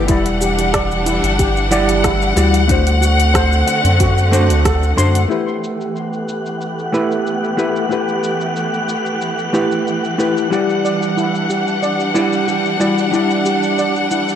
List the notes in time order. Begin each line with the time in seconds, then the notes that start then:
Already playing: G1 E3
0.08 E1 G3 D4 E4 D5 F#5, kick, closed hi-hat, shaker
0.26 closed hi-hat, shaker
0.41 G4, shaker
0.59 closed hi-hat, shaker
0.74 D5, kick, cross-stick, closed hi-hat, shaker
0.91 shaker
1.06 E4, closed hi-hat, shaker
1.23 G1, closed hi-hat, shaker
1.39 G4, kick, closed hi-hat, shaker
1.57 shaker
1.71 G3 E4 D5 F#5, closed hi-hat, shaker
1.89 closed hi-hat, shaker
2.04 E4, kick, cross-stick, closed hi-hat, shaker
2.22 shaker
2.36 D2 G3 E4 F#4 G4 D5, closed hi-hat, shaker
2.54 closed hi-hat, shaker
2.68 D3 A3 C4 D4 F#4 C5 F#5, kick, closed hi-hat, shaker
2.87 closed hi-hat, shaker
3.01 F#4, shaker
3.20 closed hi-hat, shaker
3.34 C5, kick, cross-stick, closed hi-hat, shaker
3.53 shaker
3.67 F#5, closed hi-hat, shaker
3.84 F#2, closed hi-hat, shaker
4.00 F#4, kick, closed hi-hat, shaker
4.18 shaker
4.31 A3 D4 F#4 C5, closed hi-hat, shaker
4.49 D2, closed hi-hat, shaker
4.65 D2 A4, kick, cross-stick, closed hi-hat, shaker
4.83 shaker
4.97 F#2 A3 D4 F#4 C5 C6, closed hi-hat, shaker
5.15 closed hi-hat, shaker
5.28 E3 A3 B3 E4 G4 B4 F#5 F#6, shaker
5.48 shaker
5.64 shaker
5.81 shaker
5.96 shaker
6.13 shaker
6.29 shaker
6.46 shaker
6.61 shaker
6.79 shaker
6.92 A3 E4 G4 B4, shaker
7.11 shaker
7.27 shaker
7.44 shaker
7.57 A3 E4 G4 B4, shaker
7.76 shaker
7.89 A3 E4 G4 B4, shaker
8.08 shaker
8.24 shaker
8.41 shaker
8.56 shaker
8.74 shaker
8.89 shaker
9.06 shaker
9.21 shaker
9.39 shaker
9.53 A3 E4 G4 B4, shaker
9.72 shaker
9.87 shaker
10.04 shaker
10.18 A3 E4 G4 B4, shaker
10.37 shaker
10.51 G3 D4 E4 G4 D5 F#5, shaker
10.70 shaker
10.85 D5, shaker
11.02 shaker
11.17 E4, shaker
11.35 shaker
11.50 G4, shaker
11.67 shaker
11.83 D5, shaker
12.00 shaker
12.14 G3 E4 D5 F#5, shaker
12.33 shaker
12.48 G4, shaker
12.65 shaker
12.80 G3 E4 F#4 D5, shaker
12.98 shaker
13.11 G3 E4 D5 F#5, shaker
13.31 shaker
13.46 G4, shaker
13.63 shaker
13.79 D5, shaker
13.96 shaker
14.11 E4, shaker
14.29 shaker